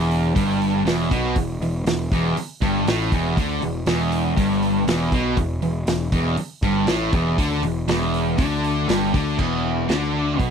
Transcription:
Already playing: E1 E2
0.11 open hi-hat
0.35 G1 G2, kick, open hi-hat
0.62 open hi-hat
0.85 E1 E2, snare, open hi-hat
1.10 B1 B2, kick, open hi-hat
1.36 E1 E2, kick, open hi-hat
1.61 E1 E2, open hi-hat
1.85 E1 E2, snare, open hi-hat
2.11 E1 E2, kick, open hi-hat
2.35 muted picked electric bass stroke, muted overdriven electric guitar stroke, open hi-hat
2.61 G1 G2, kick, open hi-hat
2.85 A1 A2, snare, open hi-hat
3.12 E1 E2, kick, open hi-hat
3.37 D2 D3, kick, open hi-hat
3.61 E1 E2, open hi-hat
3.86 E1 E2, snare, open hi-hat
4.12 open hi-hat
4.36 G1 G2, kick, open hi-hat
4.62 open hi-hat
4.87 E1 E2, snare, open hi-hat
5.12 B1 B2, kick, open hi-hat
5.37 E1 E2, kick, open hi-hat
5.62 E1 E2, open hi-hat
5.87 E1 E2, snare, open hi-hat
6.12 E1 E2, kick, open hi-hat
6.37 muted overdriven electric guitar stroke, muted picked electric bass stroke, open hi-hat
6.62 G1 G2, kick, open hi-hat
6.87 A1 A2, snare, open hi-hat
7.12 E1 E2, kick, open hi-hat
7.38 D2 D3, kick, open hi-hat
7.63 E1 E2, open hi-hat
7.88 E1 E2, snare, open hi-hat
8.14 open hi-hat
8.37 D2 D3, kick, open hi-hat
8.64 open hi-hat
8.88 G1 G2, snare, open hi-hat
9.13 D2 D3, kick, open hi-hat
9.38 E1 E2, kick, crash
9.88 D2 D3, snare, open hi-hat
10.38 B1 B2, kick, open hi-hat

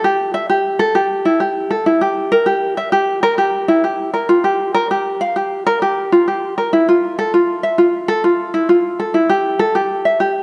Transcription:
0.04 G4
0.34 E5
0.50 G4
0.79 A4
0.95 G4
1.25 E4
1.40 G4
1.71 A4
1.86 E4
2.01 G4
2.32 A#4
2.46 G4
2.77 E5
2.92 G4
3.23 A#4
3.38 G4
3.68 E4
3.84 G4
4.14 A#4
4.29 F4
4.44 G4
4.74 A#4
4.91 G4
5.21 F5
5.36 G4
5.67 A#4
5.82 G4
6.12 F4
6.28 G4
6.58 A#4
6.73 E4
6.89 F4
7.19 A4
7.34 F4
7.63 E5
7.78 F4
8.08 A4
8.24 F4
8.54 E4
8.69 F4
9.00 A4
9.14 E4
9.29 G4
9.59 A4
9.75 G4
10.05 E5
10.20 G4

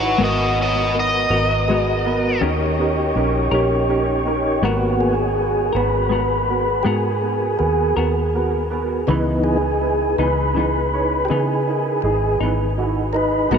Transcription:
Already playing: G#1 D#4 E4 B4 C#5 F#5
0.18 G#1 G#3 B3 F#4 A#4
0.23 B3 F#4 A#4 D#5
0.56 B3 F#4 C#5
0.63 F#4 D#5
0.94 B3 F#4 A#4
1.00 D#5
1.29 G#1 B3 F#4 A#4
1.35 B3
1.67 G#3 B3 F#4 G#4
1.72 F#4 A#4
2.04 B3 F#4 A#4
2.41 D#2 D#3 C#4 D#4 G4 A#4 C#5
2.79 C#4 G4 A#4
3.15 A#1 C#4 G4 A#4
3.51 A#1 C#4 G4 A#4
3.89 C#4 G4 A#4
4.26 C#4 G4 A#4
4.62 G#1 G#3 A#3 B3 F#4 A#4
4.67 F#4
5.01 B3 F#4 G#4 B4
5.38 B3 F#4 A#4
5.73 G#1 B3 F#4 A#4 B4
6.09 G#3 B3 F#4 A#4
6.14 A#4
6.48 B3 F#4 A#4
6.83 G#2 G#3 B3 F#4 G4 G#4 A#4
7.21 B3 F#4 A#4
7.59 D#2 B3 F#4 G#4 A#4
7.95 D#2 B3 F#4 A#4
7.99 B3
8.34 B3 F#4 A#4
8.70 B3 F#4 A#4
9.07 C#2 C#3 E3 B3 D#4 E4 B4
9.43 D#4 E4 G#4 B4
9.80 D#4 E4 B4
10.18 C#2 B3 D#4 E4 B4
10.22 E3
10.55 C#3 E3 B3 D#4 E4 B4
10.59 D#4
10.92 D#4 E4 C#5
11.25 G4 G#4
11.30 C#3 E3 B3 D#4 E4 B4
11.67 D#4 E4 A#4
12.02 G#1 D#4 E4 G#4
12.40 G#1 B3 D#4 E4 B4
12.45 E3
12.78 D#4 E4 F#4
13.13 D#4 E4 A#4 B4
13.50 G#1 F#3 G#3 B3 D#4 F#4 A#4 B4
13.54 F#4 A#4

